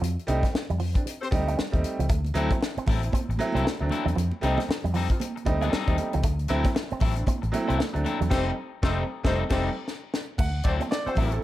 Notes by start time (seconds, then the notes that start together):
0.02 F2 F3, closed hi-hat
0.19 closed hi-hat
0.27 C2 G3 A3 C4 D#4, muted clean electric guitar stroke, closed hi-hat
0.43 G3, kick, snare, closed hi-hat
0.52 C4 D#4, muted clean electric guitar stroke, muted fingered electric bass stroke, snare
0.70 F2 G3, closed hi-hat
0.79 F3, open hi-hat
0.94 C4 D4, kick, closed hi-hat
1.04 C4 D#4, muted clean electric guitar stroke, closed hi-hat
1.21 C4 G4 A4 C5, closed hi-hat
1.31 D2 G3 A3 C4 D#4, kick, closed hi-hat
1.48 A3, closed hi-hat
1.57 G3, muted fingered electric bass stroke, snare
1.71 D#2 G3 A3 C4 D#4, muted clean electric guitar stroke, kick, closed hi-hat
1.84 closed hi-hat
1.99 C#2 F3, closed hi-hat
2.09 D2 A3, kick, closed hi-hat, muted conga, low conga
2.25 closed hi-hat, muted conga
2.34 D2 F#3 A3 C4 E4 A4, muted clean electric guitar stroke, closed hi-hat
2.50 C4, kick, closed hi-hat, high conga
2.61 E4, muted clean electric guitar stroke, snare, muted conga
2.77 C4, muted fingered electric bass stroke, closed hi-hat
2.86 A1 F#3 A3 C4 E4 A4, kick, open hi-hat, low conga
3.02 C4 E4, muted clean electric guitar stroke, closed hi-hat
3.13 C4 E4, muted clean electric guitar stroke, kick, closed hi-hat, muted conga, high conga
3.29 A1, muted clean electric guitar stroke, closed hi-hat
3.37 F#3 A3 C4 E4, muted clean electric guitar stroke, closed hi-hat, high conga
3.52 C2 F#3 C4 E4 A4, closed hi-hat, high conga
3.64 A3, muted fingered electric bass stroke, snare, muted conga
3.79 D2 F#3 A3 C4 D4, muted clean electric guitar stroke, muted conga
3.89 F#3 C4 E4 A4, closed hi-hat, high conga, low conga
4.06 E2 F#3, muted clean electric guitar stroke, closed hi-hat
4.16 F2 F3, closed hi-hat, muted conga, low conga
4.31 muted conga
4.41 C2 G3 A3 C4 D#4 A4, muted clean electric guitar stroke, closed hi-hat
4.58 G3, snare, closed hi-hat, high conga
4.68 C4 F4, muted fingered electric bass stroke, muted clean electric guitar stroke, snare, muted conga
4.84 F2 G3, closed hi-hat, muted conga
4.94 F3 G3 C4 D#4 A4, open hi-hat, low conga
5.09 C4 F4, muted clean electric guitar stroke, kick, closed hi-hat
5.20 C4 D#4, muted clean electric guitar stroke, closed hi-hat, muted conga, high conga
5.36 muted clean electric guitar stroke, closed hi-hat
5.45 D2 G3 A3 C4 D#4, kick, closed hi-hat, high conga
5.61 G3 A3 C4 D#4 A4, closed hi-hat, high conga
5.72 G3 C4 D#4 A4, muted fingered electric bass stroke, snare, muted conga
5.87 D#2 G3 A3 C4 D#4, muted clean electric guitar stroke, kick, closed hi-hat
5.98 muted clean electric guitar stroke, closed hi-hat, high conga, low conga
6.13 C#2 F3, muted clean electric guitar stroke, closed hi-hat
6.23 D2 A3, kick, closed hi-hat, low conga
6.39 closed hi-hat
6.48 D2 F#3 A3 C4 E4 A4, muted clean electric guitar stroke, closed hi-hat
6.64 C4, kick, snare, closed hi-hat, high conga
6.75 C4, muted clean electric guitar stroke, snare, muted conga
6.90 C4, muted fingered electric bass stroke, closed hi-hat, muted conga
7.00 A1 F#3 A3 C4 E4 A4, kick, open hi-hat, low conga
7.16 C4 D4, muted clean electric guitar stroke, closed hi-hat
7.26 C4 E4, muted clean electric guitar stroke, muted fingered electric bass stroke, kick, closed hi-hat, muted conga, high conga
7.42 A1, muted clean electric guitar stroke, closed hi-hat, muted conga
7.52 F#3 A3 C4 E4, muted clean electric guitar stroke, closed hi-hat, high conga
7.68 C2 F#3 C4 E4 A4, closed hi-hat, high conga
7.79 A3, muted fingered electric bass stroke, snare
7.93 D2 F#3 A3 C4 D4, muted clean electric guitar stroke, closed hi-hat, muted conga
8.04 F#3 C4 E4 A4, closed hi-hat, high conga, low conga
8.20 E2 F#3, muted clean electric guitar stroke, closed hi-hat
8.30 F1 G3 A3 C4 D#4 G4 A4 C5, kick, snare, crash
8.82 F1 G3 A3 C4 D#4 G4 A4 C5, kick, snare
9.23 F1 G3 A3 C4 D#4 G4 A4 C5, kick, snare
9.49 F1 G3 A3 C4 D#4 G4 A4 C5, kick, snare, crash
9.88 snare
10.14 snare
10.38 D2 A3 F#5, kick, crash, muted conga, low conga
10.63 D2 F#3 C4 E4 F#4 A4 C5 D5, muted clean electric guitar stroke, kick, closed hi-hat
10.80 C4, closed hi-hat, high conga
10.90 D5, muted clean electric guitar stroke, snare, muted conga
11.05 C4 F#4 A4 C5, muted fingered electric bass stroke, closed hi-hat, muted conga
11.15 A1 F#3 A3 C4 E4 A4, kick, open hi-hat, low conga
11.32 A4, muted clean electric guitar stroke, closed hi-hat